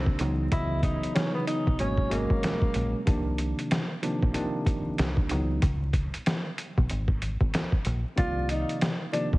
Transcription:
Already playing: C2 C3 D#3 F3 A#3 D4
0.06 kick
0.19 C#2 C#3 E3 F#3 B3 D#4, closed hi-hat
0.51 C#2 C#3 E3 F#3 B3 E4 D#5, kick, closed hi-hat
0.83 D#4, kick, closed hi-hat
1.03 closed hi-hat
1.14 C#3 E3 F#3 B3 C#4 D#4, snare, closed hi-hat
1.34 B3
1.47 D#4, closed hi-hat
1.67 B1, kick
1.79 G#1 B2 F#3 G#3 A#3 C#4, closed hi-hat
1.98 kick
2.09 B2 F#3 G#3 A#3 C#4, closed hi-hat
2.30 G#1, kick
2.43 snare, closed hi-hat
2.62 kick
2.74 A#1, closed hi-hat
3.05 C2 C3 D#3 F3 A#3 D4, kick, closed hi-hat
3.38 closed hi-hat
3.59 closed hi-hat
3.71 snare, closed hi-hat
4.02 C3 D#3 F3 A#3 D4, closed hi-hat
4.22 A#1, kick
4.34 C3 D#3 F3 A#3 D4, closed hi-hat
4.66 kick, closed hi-hat
4.98 C2, snare, closed hi-hat
5.17 kick
5.29 C#2 C#3 E3 F#3 B3 D#4, closed hi-hat
5.62 C#2, kick, closed hi-hat
5.93 kick, closed hi-hat
6.14 closed hi-hat
6.26 snare, closed hi-hat
6.58 closed hi-hat
6.78 B1, kick
6.90 G#1, closed hi-hat
7.08 kick
7.22 closed hi-hat
7.41 G#1, kick
7.54 snare, closed hi-hat
7.72 kick
7.85 A#1, closed hi-hat
8.16 C2 C3 D#3 F3 A#3 F4 D5, kick, closed hi-hat
8.49 D#4, closed hi-hat
8.69 closed hi-hat
8.81 snare, closed hi-hat
9.13 C3 D#3 F3 A#3 D4, closed hi-hat
9.33 A#1, kick

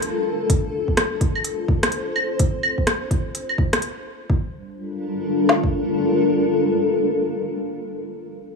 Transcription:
Already playing: G3 D4 F4 A4 A#4
0.02 closed hi-hat
0.50 kick, closed hi-hat
0.88 kick
0.97 cross-stick, closed hi-hat
1.21 kick, closed hi-hat
1.35 C5, claves
1.44 closed hi-hat
1.68 kick
1.83 cross-stick, closed hi-hat
1.92 closed hi-hat
2.16 claves
2.39 kick, closed hi-hat
2.63 claves
2.78 kick
2.87 cross-stick, closed hi-hat
3.11 kick, closed hi-hat
3.35 closed hi-hat
3.49 claves
3.58 kick
3.73 cross-stick, closed hi-hat
3.82 closed hi-hat
4.30 G3, kick
4.39 D4
4.45 F4
4.51 A4
4.59 A#4
5.49 snare
5.64 kick

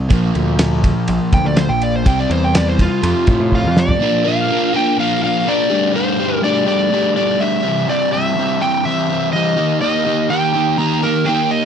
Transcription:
Already playing: C2
0.09 A#1 A#2 F3, kick, ride
0.13 A#3
0.35 D2, ride
0.59 snare, ride
0.84 kick, ride
1.08 A#1, ride
1.33 D2 G5, kick, ride
1.44 D2 D5
1.57 C5, snare, ride
1.68 A#1 G5
1.82 D5, ride
1.96 C5
2.05 C2 C3 G3 G5, kick, ride
2.09 C4
2.19 D5, snare
2.30 E2 C5, ride
2.44 G5
2.55 D5, snare, ride
2.68 C5
2.79 F4, kick, ride
3.02 F2 C3, ride
3.06 F3
3.27 A2, kick, ride
3.40 A2
3.52 F5, kick
3.64 F2
3.77 D5, snare
3.88 floor tom
3.99 A#2 F3 A#3 D4 F4 A#4
4.24 A#3 D4 F4 A#4 F5
4.49 A#3 D4 F4 A#4
4.73 A#3 D4 F4 A#4 G5
4.97 A#2 F3 A#3 D4 F4 A#4 F5
5.21 A#3 D4 F4 A#4 F5
5.45 A#3 D4 F4 A#4 D5
5.70 G3 A3 D4 G4
5.93 G3 A3 D4 G4 C5
6.19 A3 D4 G4
6.42 G3 A3 D4 G4 D5
6.66 A3 D4 G4 D5
6.90 G3 A3 D4 G4
7.15 A3 D4 G4 D5
7.39 G3 A3 D4 G4 E5
7.62 E3 G3 C4 G4
7.67 C3
7.87 C3 E3 G3 C4 G4 D5
8.11 G3 C4 G4 E5
8.36 E3 G3 C4 G4
8.60 G3 C4 G4 G5
8.84 C3 E3 G3 C4 G4 E5
9.09 G3 C4 G4
9.32 E3 G3 C4 G4 D#5
9.57 D#3 A#3 D#4 G4
9.80 D#3 A#3 D#4 G4 D#5
10.04 A#3 D#4 G4
10.29 D#3 A#3 D#4 G4 G5
10.53 A#3 D#4 G4
10.77 D#3 A#3 D#4 G4 A#5
11.03 A#3 D#4 G4 A#4
11.26 D#3 A#3 D#4 G4 G5
11.51 D#5

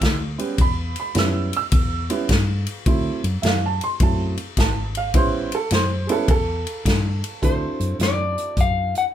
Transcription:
Already playing: E6
0.01 D2, kick, snare, ride
0.38 G3 B3 C#4 G4, ride
0.58 E2 B5, kick, ride
0.96 ride
1.00 B5
1.14 F#2 G3 B3 C#4 E4, snare, ride
1.19 E6
1.53 E6, ride
1.72 E2, kick, ride
2.10 G3 B3 C#4 E4, ride
2.29 G2, kick, snare, ride
2.67 ride
2.86 D2 F#3 A3 C4 E4, kick, ride
3.24 F#2, ride
3.42 F#2 E5, snare, ride
3.47 F5
3.66 A5
3.81 C6, ride
4.00 F#2 F#3 A3 C4 E4 A5, kick, ride
4.37 ride
4.57 G#1 A5, kick, snare, ride
4.95 F5, ride
5.14 A1 G3 B3 C#4 E4 C5, kick, ride
5.52 A4, ride
5.71 F#2 C5, snare, ride
6.07 G3 B3 C#4 E4 G#4, ride
6.12 A4
6.27 E2 G#4 A4, kick, ride
6.67 ride
6.85 G2, kick, snare, ride
7.24 ride
7.42 D2 F#3 C4 D4 E4 A4 C5, kick, closed hi-hat
7.80 F#2, closed hi-hat
7.99 F#2 D5, snare, closed hi-hat
8.38 closed hi-hat
8.57 F#2 F5, kick, closed hi-hat
8.95 F#5, closed hi-hat

